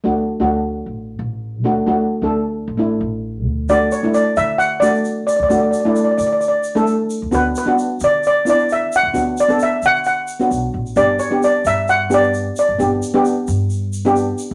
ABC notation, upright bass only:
X:1
M:4/4
L:1/16
Q:"Swing 16ths" 1/4=132
K:D
V:1 name="Upright bass" clef=bass
D,,3 D,,4 A,,,3 A,,,4 D,,2 | D,,3 D,,4 A,,,3 A,,,4 D,,2 | D,,2 z4 D,8 z D,, | D,,2 z4 D,8 z D,, |
D,,2 z4 D,8 z D,, | D,,2 z4 D,6 B,,,2 A,,,2 | G,,,2 z4 G,,8 z G,,, | G,,,2 z4 G,,8 z ^G,,, |]